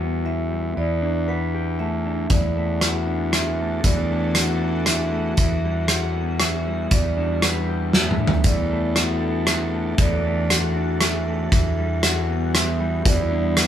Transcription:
Already playing: fingered electric bass E2, clean electric guitar E3 G3 F#4, vibraphone F#5
0.00 clean electric guitar B3
0.24 clean electric guitar E3, vibraphone E5
0.51 clean electric guitar G3
0.76 fingered electric bass E2, clean electric guitar E3, vibraphone D5
1.02 clean electric guitar D4
1.28 clean electric guitar B4, vibraphone F#5
1.54 clean electric guitar G4
1.79 clean electric guitar A3, vibraphone E5
2.06 clean electric guitar D4
2.30 fingered electric bass E2, clean electric guitar E3, ambient pad E3 D4 F#4 A4, vibraphone D5, kick, closed hi-hat
2.57 clean electric guitar A3
2.81 clean electric guitar F#4, vibraphone F#5, cross-stick, closed hi-hat
3.07 clean electric guitar D4
3.33 clean electric guitar E3, vibraphone E5, cross-stick, closed hi-hat
3.60 clean electric guitar A3
3.84 fingered electric bass E2, clean electric guitar E3, vibraphone D5, kick, closed hi-hat
4.11 clean electric guitar A3
4.35 clean electric guitar F#4, vibraphone F#5, cross-stick, closed hi-hat
4.61 clean electric guitar D4
4.86 clean electric guitar E3, vibraphone E5, cross-stick, closed hi-hat
5.12 clean electric guitar A3
5.37 fingered electric bass E2, clean electric guitar E3, ambient pad G3 B3, vibraphone E5, kick, closed hi-hat
5.65 clean electric guitar G3
5.88 clean electric guitar F#4, vibraphone F#5, cross-stick, closed hi-hat
6.16 clean electric guitar B3
6.40 clean electric guitar E3, vibraphone E5, cross-stick, closed hi-hat
6.67 clean electric guitar G3
6.91 fingered electric bass E2, clean electric guitar E3, ambient pad A4, vibraphone D5, kick, closed hi-hat
7.17 clean electric guitar D4
7.42 clean electric guitar B4, vibraphone F#5, cross-stick, closed hi-hat
7.68 clean electric guitar G4
7.93 clean electric guitar A3, vibraphone E5, snare
8.11 mid tom
8.20 clean electric guitar D4
8.27 floor tom
8.44 fingered electric bass E2, ambient pad E3 D4 F#4, clean electric guitar E3, vibraphone D5, kick, closed hi-hat
8.71 clean electric guitar A3
8.96 clean electric guitar F#4, vibraphone F#5, cross-stick, closed hi-hat
9.21 clean electric guitar D4
9.47 clean electric guitar E3, vibraphone E5, cross-stick, closed hi-hat
9.73 clean electric guitar A3
9.98 fingered electric bass E2, clean electric guitar E3, vibraphone D5, kick, closed hi-hat
10.25 clean electric guitar A3
10.50 clean electric guitar F#4, vibraphone F#5, cross-stick, closed hi-hat
10.76 clean electric guitar D4
11.01 clean electric guitar E3, vibraphone E5, cross-stick, closed hi-hat
11.27 clean electric guitar A3
11.50 fingered electric bass E2, clean electric guitar E3, ambient pad G3 B3, vibraphone E5, kick, closed hi-hat
11.78 clean electric guitar G3
12.03 clean electric guitar F#4, vibraphone F#5, cross-stick, closed hi-hat
12.29 clean electric guitar B3
12.54 clean electric guitar E3, vibraphone E5, cross-stick, closed hi-hat
12.80 clean electric guitar G3
13.05 fingered electric bass E2, clean electric guitar E3, ambient pad A4, vibraphone D5, kick, closed hi-hat
13.32 clean electric guitar D4
13.57 clean electric guitar B4, vibraphone F#5, cross-stick, closed hi-hat

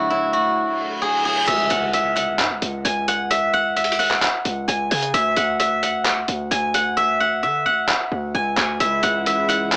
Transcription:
Already playing: string section D3 F#3 A3 E4, guzheng F#4 G#4
0.10 guzheng E4
0.33 guzheng F#4
0.56 reverse cymbal
1.02 guzheng G#4
1.25 guzheng G#4
1.47 808-style bass C#2, guzheng E5, closed hi-hat, crash, impact
1.70 808-style bass C#2, guzheng F#5, closed hi-hat
1.93 guzheng E5, closed hi-hat
2.16 guzheng F#5, closed hi-hat
2.39 808-style bass G#2, clap, closed hi-hat
2.51 808-style bass C#2
2.62 808-style bass C#2, closed hi-hat
2.85 808-style bass C#2, guzheng G#5, closed hi-hat
3.08 guzheng F#5, closed hi-hat
3.31 guzheng E5, closed hi-hat
3.54 guzheng F#5
3.76 guzheng E5, closed hi-hat
3.84 closed hi-hat
3.92 closed hi-hat
3.99 guzheng F#5, open hi-hat
4.11 clap
4.22 clap, closed hi-hat
4.45 808-style bass C#2, closed hi-hat
4.68 808-style bass C#2, guzheng G#5, closed hi-hat
4.91 808-style bass C#3, guzheng G#5, closed hi-hat, open hi-hat
5.03 closed hi-hat
5.14 808-style bass D2, guzheng E5, closed hi-hat
5.36 808-style bass D2, guzheng F#5, closed hi-hat
5.59 guzheng E5, closed hi-hat
5.83 guzheng F#5, closed hi-hat
6.05 clap, closed hi-hat
6.28 808-style bass D2, closed hi-hat
6.51 808-style bass D2, guzheng G#5, closed hi-hat
6.74 guzheng F#5, closed hi-hat
6.97 guzheng E5
7.20 guzheng F#5
7.43 808-style bass D3, guzheng E5
7.66 808-style bass D2, guzheng F#5
7.89 clap
8.12 808-style bass D2
8.35 808-style bass C#2, guzheng G#5
8.57 808-style bass D2, guzheng G#5, clap
8.80 808-style bass C#2, string section C#3 E3 G#3 E4, guzheng E5, closed hi-hat
9.03 808-style bass C#2, guzheng F#5, closed hi-hat
9.26 guzheng E5, closed hi-hat
9.49 guzheng F#5, closed hi-hat
9.72 808-style bass G#2, clap, closed hi-hat

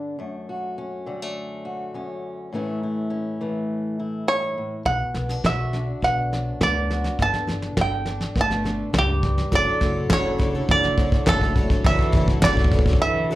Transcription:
Already playing: steel-string acoustic guitar G2 D3 B3 D4 A4
0.19 steel-string acoustic guitar F#2 A3
0.49 steel-string acoustic guitar F#4
0.78 steel-string acoustic guitar C#4
1.06 steel-string acoustic guitar D3 G3
1.22 steel-string acoustic guitar A3
1.65 steel-string acoustic guitar F#4
1.94 steel-string acoustic guitar F#2 C#4
2.53 steel-string acoustic guitar A2 E3 A3 C#4 E4
2.83 steel-string acoustic guitar E4
3.10 steel-string acoustic guitar C#4
3.41 steel-string acoustic guitar E3 A3
3.99 steel-string acoustic guitar E4
4.27 steel-string acoustic guitar G2, five-string banjo C#5
4.58 steel-string acoustic guitar A2
4.85 upright bass B1, steel-string acoustic guitar B2, five-string banjo F#5, kick, snare
5.14 upright bass B1, steel-string acoustic guitar B3, snare
5.29 steel-string acoustic guitar D4, snare
5.44 upright bass B1, steel-string acoustic guitar F#4, five-string banjo E5, kick, snare
5.73 steel-string acoustic guitar D3 D4, snare
6.02 upright bass B1, steel-string acoustic guitar B3, five-string banjo F#5, kick, snare
6.32 steel-string acoustic guitar F#2 D4, snare
6.61 upright bass D2, steel-string acoustic guitar B3, five-string banjo D5, kick, snare
6.90 steel-string acoustic guitar F#4, snare
7.04 snare
7.19 upright bass G1, steel-string acoustic guitar G2 D3 B3 D4 A4, five-string banjo A5, kick, snare
7.33 snare
7.47 upright bass G1, steel-string acoustic guitar D4, snare
7.62 snare
7.77 upright bass G1, steel-string acoustic guitar A4, kick, snare
7.81 five-string banjo G5
8.06 steel-string acoustic guitar D4, snare
8.21 snare
8.35 upright bass G1, cello A3, steel-string acoustic guitar B3, kick, snare
8.41 five-string banjo A5
8.51 snare
8.63 steel-string acoustic guitar D3 D4, snare
8.93 upright bass C#2, cello G2, steel-string acoustic guitar A2, kick, snare
8.98 five-string banjo G4
9.23 steel-string acoustic guitar G2, kick, snare
9.38 snare
9.51 upright bass F#1, felt piano F#1 F#2 F#3 D4 A4 C#5, twelve-string acoustic guitar F#2 F#3 A3 D4 A4 C#5, harmonium F#3 E4 F#4 A4, kick, snare
9.55 cello D3, five-string banjo D5
9.81 upright bass F#1, felt piano F#3 D4 A4 D5, twelve-string acoustic guitar A3 D4 A4 C#5, kick, snare
10.10 upright bass F#1, twelve-string acoustic guitar F#2 F#3 A3 D4 A4 C#5, cello C#3, felt piano F#3 D4 A4 C#5, five-string banjo C#5, kick, snare, clap
10.38 felt piano F#3 D4 A4 C#5, twelve-string acoustic guitar A3 D4 A4 C#5, kick, snare
10.55 twelve-string acoustic guitar A3 D4 A4 C#5
10.68 upright bass F#1, cello D3, felt piano F#3 D4 A4 C#5, five-string banjo D5, kick, snare
10.83 snare
10.98 felt piano F#3 D4 A4 C#5, twelve-string acoustic guitar A3 D4 A4 C#5, kick, snare
11.12 kick
11.26 upright bass F#1, twelve-string acoustic guitar F#2 F#3 A3 D4 A4 C#5, cello A2, felt piano F#3 D4 A4 E5, five-string banjo A4, kick, snare, clap
11.41 twelve-string acoustic guitar A3 D4 A4 C#5, kick
11.55 felt piano F#3 D4 A4 C#5, twelve-string acoustic guitar A3 D4 A4 C#5, kick, snare
11.70 twelve-string acoustic guitar A3 D4 A4 C#5, kick, snare
11.84 upright bass F#1, felt piano F#1 F#2 F#3 D4 A4 C#5, twelve-string acoustic guitar F#2 F#3 A3 D4 A4 C#5, cello E3, five-string banjo E5, kick, snare
11.99 kick
12.12 upright bass F#1, felt piano F#3 D4 A4, twelve-string acoustic guitar A3 D4 A4 C#5, kick, snare
12.17 felt piano E5
12.28 kick
12.42 upright bass F#1, twelve-string acoustic guitar F#2 F#3 A3 D4 A4, cello D3, felt piano F#3 D4 A4 C#5, five-string banjo D5, kick, snare, clap
12.46 twelve-string acoustic guitar C#5
12.57 kick
12.64 kick
12.72 felt piano F#3 D4 A4 B4, twelve-string acoustic guitar A3 D4 A4 C#5, kick, snare
12.79 kick
12.86 twelve-string acoustic guitar A3 D4 A4 C#5, kick
12.93 kick
13.00 cello E3, felt piano F#3 D4 A4 C#5, five-string banjo E5
13.30 felt piano F#3 D4 A4 B4, twelve-string acoustic guitar A3 D4

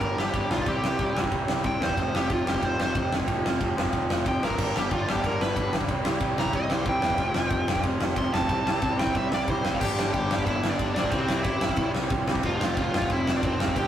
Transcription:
Already playing: overdriven electric guitar G2 D3 G3
0.01 picked electric bass G1, lead electric guitar A#4, kick, ride
0.17 picked electric bass G1, lead electric guitar G4, snare
0.32 picked electric bass G1, overdriven electric guitar G2 D3 G3, kick, ride
0.50 picked electric bass B1, lead electric guitar F4, snare
0.58 kick
0.64 picked electric bass C2, overdriven electric guitar C3 G3 C4, kick, ride
0.68 lead electric guitar G4
0.82 picked electric bass C2, snare
0.99 picked electric bass C2, kick, ride
1.14 picked electric bass C2, overdriven electric guitar C3 G3 C4, snare
1.24 kick
1.32 picked electric bass C2, kick, ride
1.48 picked electric bass C2, snare
1.63 picked electric bass C2, overdriven electric guitar C3 G3 C4, lead electric guitar G5, kick, ride
1.80 picked electric bass E2, lead electric guitar C5, snare
1.89 kick
1.97 picked electric bass F1, overdriven electric guitar F2 C3 F3, kick, ride
2.14 picked electric bass F1, lead electric guitar G4, snare
2.30 picked electric bass F1, lead electric guitar F4, kick, ride
2.46 picked electric bass F1, overdriven electric guitar F2 C3 F3, lead electric guitar G4, snare
2.54 kick
2.62 picked electric bass F1, lead electric guitar C5, kick, ride
2.78 picked electric bass F1, lead electric guitar C5, snare
2.94 picked electric bass F1, overdriven electric guitar F2 C3 F3, kick, ride
3.12 picked electric bass F1, snare
3.20 kick
3.26 picked electric bass F1, overdriven electric guitar F2 C3 F3, kick, ride
3.44 picked electric bass F1, snare
3.61 picked electric bass F1, kick, ride
3.76 picked electric bass F1, overdriven electric guitar F2 C3 F3, snare
3.85 kick
3.93 picked electric bass F1, kick, ride
4.10 picked electric bass F1, snare
4.25 picked electric bass F1, overdriven electric guitar F2 C3 F3, kick, ride
4.29 lead electric guitar G5
4.42 picked electric bass A1, lead electric guitar A#4, snare
4.50 kick
4.58 picked electric bass G1, overdriven electric guitar G2 D3 G3, kick, crash
4.76 picked electric bass G1, lead electric guitar G4, snare
4.91 picked electric bass G1, lead electric guitar F4, kick, ride
5.07 picked electric bass G1, overdriven electric guitar G2 D3 G3, lead electric guitar G4, snare
5.16 kick
5.24 picked electric bass G1, lead electric guitar A#4, kick, ride
5.40 picked electric bass G1, lead electric guitar B4, snare
5.56 picked electric bass G1, overdriven electric guitar G2 D3 G3, kick, ride
5.73 picked electric bass G1, snare
5.81 kick
5.88 picked electric bass C2, overdriven electric guitar C3 G3 C4, kick, ride
6.04 picked electric bass C2, snare
6.20 picked electric bass C2, kick, ride
6.36 picked electric bass C2, overdriven electric guitar G3 C4, lead electric guitar A#5, snare
6.40 overdriven electric guitar C3
6.45 kick
6.53 picked electric bass C2, lead electric guitar D#5, kick, ride
6.70 picked electric bass C2, lead electric guitar C5, snare
6.85 picked electric bass C2, overdriven electric guitar C3 G3 C4, lead electric guitar G5, kick, ride
7.02 picked electric bass E2, snare
7.10 kick
7.17 picked electric bass F1, overdriven electric guitar F2 C3 F3, kick, ride
7.34 picked electric bass F1, snare
7.50 picked electric bass F1, kick, ride
7.67 picked electric bass F1, overdriven electric guitar F2 C3 F3, snare
7.75 kick
7.83 picked electric bass F1, kick, ride
8.00 picked electric bass F1, snare
8.15 picked electric bass F1, overdriven electric guitar F2 C3 F3, lead electric guitar C6, kick, ride
8.33 picked electric bass F1, lead electric guitar A5, snare
8.41 kick
8.47 picked electric bass C2, overdriven electric guitar C3 G3 C4, kick, ride
8.65 picked electric bass C2, snare
8.82 picked electric bass C2, kick, ride
8.97 picked electric bass C2, overdriven electric guitar C3 G3 C4, lead electric guitar G5, snare
9.07 kick
9.15 picked electric bass C2, lead electric guitar E5, kick, ride
9.30 picked electric bass C2, lead electric guitar D5, snare
9.47 picked electric bass C2, overdriven electric guitar C3 G3 C4, lead electric guitar C5, kick, ride
9.64 picked electric bass F1, snare
9.73 lead electric guitar F5, kick
9.79 picked electric bass G1, overdriven electric guitar G2 D3 G3, lead electric guitar G4 G5, kick, crash
9.98 picked electric bass G1, snare
10.13 picked electric bass G1, lead electric guitar G4 G5, kick, ride
10.31 picked electric bass G1, snare
10.39 kick
10.46 picked electric bass G1, lead electric guitar E4 E5, kick, ride
10.64 snare
10.70 lead electric guitar D4 D5
10.79 picked electric bass G1, kick, ride
10.94 picked electric bass D2, overdriven electric guitar G2 D3 G3, lead electric guitar D4 D5, snare
11.04 kick
11.10 picked electric bass C2, overdriven electric guitar C3 G3 C4, lead electric guitar C4 C5, kick, ride
11.29 picked electric bass C2, snare
11.43 picked electric bass A1, lead electric guitar E4 E5, kick, ride
11.61 snare
11.69 kick
11.76 picked electric bass C2, kick, ride
11.95 snare
12.10 picked electric bass C2, kick, ride
12.27 overdriven electric guitar C3 G3 C4, snare
12.35 kick
12.43 picked electric bass F1, overdriven electric guitar F2 C3 F3, lead electric guitar F4 F5, kick, ride
12.59 picked electric bass F1, snare
12.77 picked electric bass F1, lead electric guitar F4 F5, kick, ride
12.92 picked electric bass F1, snare
13.02 kick
13.10 picked electric bass F1, lead electric guitar E4 E5, kick, ride
13.27 snare
13.37 lead electric guitar D4 D5
13.43 picked electric bass F1, lead electric guitar C4 C5, kick, ride
13.59 picked electric bass F1, overdriven electric guitar F2 C3 F3, snare
13.68 kick
13.75 picked electric bass F1, overdriven electric guitar F2 C3 F3, lead electric guitar G4 G5, kick, ride

